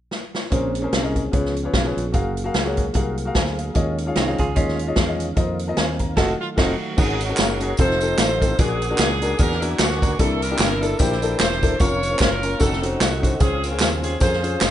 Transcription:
0.11 snare
0.35 snare
0.50 A#1 A#2 A#3 C4 C#4 G#4 A#4 C5, kick, closed hi-hat
0.75 closed hi-hat
0.82 C#4 G#4 A#4 C5
0.93 C2, snare, closed hi-hat
1.03 C#4 G#4 A#4 D#5
1.16 kick, closed hi-hat
1.32 C#2 C#3 F3 B3 C#4 F4 G#4 B4 C#5, kick, closed hi-hat
1.45 snare
1.57 closed hi-hat
1.64 F4 G#4 B4 C#5
1.74 B1, kick, snare, closed hi-hat
1.85 F4 G#4 B4 C#5
1.97 A#1, closed hi-hat
2.12 F#1 F#3 A#3 F#4 G#4 A#4 F5, kick, closed hi-hat
2.37 closed hi-hat
2.44 F#4 G#4 A#4 F5
2.54 C#2, snare, closed hi-hat
2.64 F#4 G#4 A#4 C#5
2.77 kick, closed hi-hat
2.93 C2 F#4 G#4 A#4 F5, kick, closed hi-hat
3.18 closed hi-hat
3.25 F#4 G#4 A#4 F5
3.35 D2 C5 G#5 A#5, kick, snare, closed hi-hat
3.46 snare
3.58 G#4 F5, closed hi-hat
3.74 D#2 D#3 G#3 C#4 F4 G#4 C#5 D#5, kick, closed hi-hat
3.98 closed hi-hat
4.06 F4 G#4 C#5 F5
4.16 C2 C4 D#4, snare, closed hi-hat
4.26 F4 G#4 C#5 F5
4.38 C#2 F4 G#4, kick, closed hi-hat
4.55 D#2 C#4 F4 G#4 C#5 D#5, kick, closed hi-hat
4.68 snare
4.79 closed hi-hat
4.87 F4 G#4 C#5 D#5
4.96 E2, kick, snare, closed hi-hat
5.07 F4 G#4 C#5 D#5
5.20 closed hi-hat
5.36 F2 A#3 C4 F4 A#4 C5 D#5, kick, closed hi-hat
5.59 closed hi-hat
5.67 F4 A#4 C5 D#5
5.77 D#2 C5 G#5, snare, closed hi-hat
5.99 A#5, kick, closed hi-hat
6.16 F1 F#3 A3 F4 F#4 A4 D#5, kick, snare, crash
6.40 F4
6.56 F1 A3 C4 D#4 F4 F#4 A4 D#5, kick, snare, crash
6.97 G#1 G#2 C#4 D#4 F#4 G#4 A#4 C#5 F#5 A#5, kick, crash, tambourine
7.21 C#4 F#4 A#4, closed hi-hat, tambourine
7.29 C#4 F#4 G#4 A#4
7.37 F#1, snare, clap, closed hi-hat, tambourine
7.60 C#4 F#4 G#4 A#4, closed hi-hat, tambourine
7.77 F1 C4 D#4 F4 A4 C5 D#5 F5 C6, kick, closed hi-hat, tambourine
7.91 snare
8.01 C4 D#4 F4 A4, closed hi-hat, tambourine
8.18 A1 D#4 A4 C5, snare, clap, closed hi-hat, tambourine
8.40 C4 D#4 F4 A4, kick, closed hi-hat, tambourine
8.58 A#1 A#2 A#3 C#4 D4 F#4 G#4 A#4 F#5 G#5 D6, kick, closed hi-hat, tambourine
8.82 closed hi-hat, tambourine
8.90 A#3 D4 F#4 A#4
8.98 C#2 C#4 D4 G#4, snare, clap, closed hi-hat, tambourine
9.21 A#3 D4 F#4 A#4, closed hi-hat, tambourine
9.38 E2 A#3 C#4 D4 F#4 G#4 A#4, kick, closed hi-hat, tambourine
9.51 snare
9.61 A#3 D4 E4 F#4 A#4, closed hi-hat, tambourine
9.79 D2 C#4 D4 F#4, snare, clap, closed hi-hat, tambourine
9.91 snare
10.01 A#3 D4 F#4 A#4, kick, closed hi-hat, tambourine
10.18 C2 C3 A#3 D4 E4 A4 A#4 E5 A5, kick, closed hi-hat, tambourine
10.42 D4 E4 A#4, closed hi-hat, tambourine
10.50 A#3 D4 E4 G4
10.58 G1, snare, clap, closed hi-hat, tambourine
10.81 A#3 D4 E4 A4, closed hi-hat, tambourine
10.99 A#1 A#3 D4 E4 G4 C5, kick, closed hi-hat, tambourine
11.12 snare
11.21 A#3 D4 E4 A4, closed hi-hat, tambourine
11.39 E1 E4 G4 C5, snare, clap, closed hi-hat, tambourine
11.52 snare
11.62 A#3 D4 E4 A4, kick, closed hi-hat, tambourine
11.79 F1 A#3 C#4 F4 A#4 C#5 F5 C#6, kick, closed hi-hat, tambourine
12.03 closed hi-hat, tambourine
12.11 A#3 C#4 F4 C5
12.19 F#1 C#4 F4 A#4, kick, snare, clap, closed hi-hat, tambourine
12.42 A#3 C#4 F4 A#4, closed hi-hat, tambourine
12.59 F1 C4 C#4 D#4 F#4 A4 D#5 F#5, kick, closed hi-hat, tambourine
12.72 snare
12.82 C#4 D#4 F#4 C5, closed hi-hat, tambourine
13.00 C2 A3 D#4 F#4, snare, clap, closed hi-hat, tambourine
13.22 C#4 D#4 F#4 C5, kick, closed hi-hat, tambourine
13.40 C#2 C#3 C4 C#4 F4 G#4 C5 F5 G#5, kick, closed hi-hat, tambourine
13.64 F4 A#4, closed hi-hat, tambourine
13.71 C#4 F4 G#4 C5
13.79 D#2, snare, clap, closed hi-hat, tambourine
14.02 C#4 F4 G#4 C5, closed hi-hat, tambourine
14.20 F2 C#4 F4 G#4 A#4 C5, kick, closed hi-hat, tambourine
14.33 snare
14.43 C#4 F4 G#4 C5, closed hi-hat, tambourine
14.61 F1 F4 G#4 C5, snare, clap, closed hi-hat, tambourine

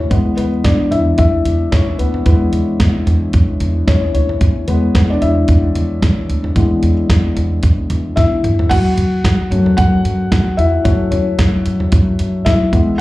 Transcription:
Already playing: F#3 A3 C#4 C#5
0.10 E2 E3 G#3 B3 B4, kick, closed hi-hat
0.37 E2 B3 B4, closed hi-hat, floor tom
0.64 E2 D4 D5, kick, snare, closed hi-hat
0.91 E2 E4 E5, closed hi-hat, floor tom
1.18 E2 E4 E5, kick, closed hi-hat
1.45 E2, closed hi-hat, floor tom
1.72 E2 C#4 C#5, kick, snare, closed hi-hat
1.99 D2 B3 B4, closed hi-hat
2.14 floor tom
2.26 E2 E3 G#3 B3 B4, kick, closed hi-hat
2.53 closed hi-hat, floor tom
2.80 E2, kick, snare, closed hi-hat
3.06 E2, closed hi-hat, floor tom
3.33 E2, kick, closed hi-hat
3.60 E2, closed hi-hat, floor tom
3.87 E2 C#4 C#5, kick, snare, closed hi-hat
4.14 D2 C#4 C#5, closed hi-hat
4.29 floor tom
4.41 E2, kick, closed hi-hat
4.68 E2 E3 G#3 B3 B4, closed hi-hat, floor tom
4.95 E2 B3 B4, kick, snare, closed hi-hat
5.10 D4 D5
5.22 E2 E4 E5, closed hi-hat, floor tom
5.48 E2, kick, closed hi-hat
5.75 E2, closed hi-hat, floor tom
6.02 E2, kick, snare, closed hi-hat
6.29 D2, closed hi-hat
6.44 floor tom
6.56 E2 E3 G#3 B3, kick, closed hi-hat
6.83 E2, closed hi-hat, floor tom
7.10 E2, kick, snare, closed hi-hat
7.37 E2, closed hi-hat, floor tom
7.63 E2, kick, closed hi-hat
7.90 E2, closed hi-hat, floor tom
8.16 E2 E4 E5, kick, snare, closed hi-hat
8.44 E2, closed hi-hat, mid tom
8.59 floor tom
8.69 F#2 F#4 F#5, kick, closed hi-hat, crash
8.97 F#2, closed hi-hat, floor tom
9.24 F#2, kick, snare, closed hi-hat
9.51 F#2 F#3 A3 C#4, closed hi-hat
9.66 floor tom
9.77 F#2 F#4 F#5, kick, closed hi-hat
10.05 F#2, closed hi-hat
10.32 F#2, kick, snare, closed hi-hat
10.57 E2 E4 E5, closed hi-hat
10.84 F#2 F#3 A3 C#4 C#5, kick, closed hi-hat
11.11 F#2 C#4 C#5, closed hi-hat, floor tom
11.39 F#2, kick, snare, closed hi-hat
11.66 F#2, closed hi-hat
11.80 floor tom
11.92 F#2, kick, closed hi-hat
12.19 F#2, closed hi-hat
12.45 F#2 E4 E5, kick, snare, closed hi-hat
12.72 E2 E3 G#3 B3, kick, closed hi-hat

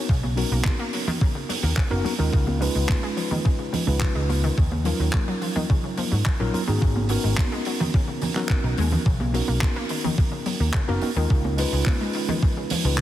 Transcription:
0.09 B1 C#3, kick
0.23 C#3, high conga
0.36 F#3 B3 C#4 D#4 F#4 A#4, open hi-hat
0.51 B1 A#3
0.65 C#3, kick, clap, high conga
0.79 A#3
0.93 F#3, open hi-hat
1.07 D#3, high conga, low conga
1.21 C#3, kick
1.35 C#3
1.49 F#3, open hi-hat, high conga
1.63 D#2 A#3
1.77 C#3, kick, clap
1.90 F#1 A#3 B3 C#4 D#4 F#4 A#4
2.04 F#3 B3 C#4 D#4 F#4 A#4, muted picked electric bass stroke, open hi-hat, high conga
2.18 D#2 D#3 G#3 C#4 D#4 F4 A#4
2.33 C#2 C#3, kick
2.47 C#3, high conga
2.60 F3 G#3 C#4 D#4 F4 B4, open hi-hat
2.75 C#2 G#3
2.89 C#3, kick, clap, high conga
3.03 G#3
3.17 F3, open hi-hat
3.31 D#3, high conga, low conga
3.45 C#3, kick
3.59 C#3
3.73 F3, open hi-hat, high conga, low conga
3.86 C#2 G#3 C#4 D#4 F4 B4
4.01 C#3, kick, clap
4.15 C#2 G#3
4.29 F3, open hi-hat, high conga
4.44 D#3
4.58 D#2 C#3, kick
4.71 C#3, high conga
4.84 F3 F#3 C#4 D#4 F4 A#4, open hi-hat
4.99 D#2 F#3
5.13 C#3, kick, clap, high conga
5.28 F#3
5.42 F3, open hi-hat
5.56 D#3, high conga, low conga
5.70 C#3, kick
5.84 C#3
5.97 F3, open hi-hat, high conga
6.12 G#2 F#3
6.25 C#3, kick, clap
6.39 A#1 F#3 C#4 D#4 F4 A#4
6.54 F3 F#3 C#4 D#4 F4 A#4, muted picked electric bass stroke, open hi-hat, high conga
6.67 G#2 D#3 B3 C#4 D#4 F#4 G#4
6.82 G#1 C#3, kick
6.96 C#3, high conga
7.09 F#3 B3 C#4 D#4 F#4 A#4, open hi-hat
7.24 G#1 G#3
7.38 C#3, kick, clap, high conga
7.52 G#3
7.65 F#3, open hi-hat
7.80 D#3, high conga, low conga
7.94 C#3, kick
8.08 C#3
8.22 C#3, open hi-hat, high conga, low conga
8.35 F#3 B3 C#4 D#4 F#4 A#4, clap
8.49 A#3, kick, clap
8.64 B1 D#3
8.78 D#2 G#3, open hi-hat, high conga
8.92 D#3, low conga
9.06 B1 C#3, kick
9.20 C#3, high conga
9.33 F#3 B3 C#4 D#4 F#4 A#4, open hi-hat
9.48 B1 A#3
9.61 C#3, kick, clap, high conga
9.76 A#3
9.89 D#3, open hi-hat
10.04 D#3, high conga, low conga
10.18 C#3, kick
10.32 C#3
10.46 F#3, open hi-hat, high conga
10.60 D#2 A#3
10.73 C#3, kick, clap
10.88 F#1 A#3 B3 C#4 D#4 F#4 A#4
11.01 D#3 B3 C#4 D#4 F#4 A#4, muted picked electric bass stroke, open hi-hat, high conga
11.16 D#2 D#3 G#3 C#4 D#4 F4 A#4
11.30 C#2 C#3, kick
11.44 C#3, high conga
11.57 F3 G#3 C#4 D#4 F4 B4, open hi-hat
11.72 C#2 G#3
11.86 C#3, kick, clap, high conga
12.01 G#3
12.13 D#3, open hi-hat
12.28 D#3, high conga, low conga
12.43 C#3, kick
12.57 C#3
12.70 F3, open hi-hat, high conga, low conga
12.84 C#2 G#3 C#4 D#4 F4 B4
12.98 clap

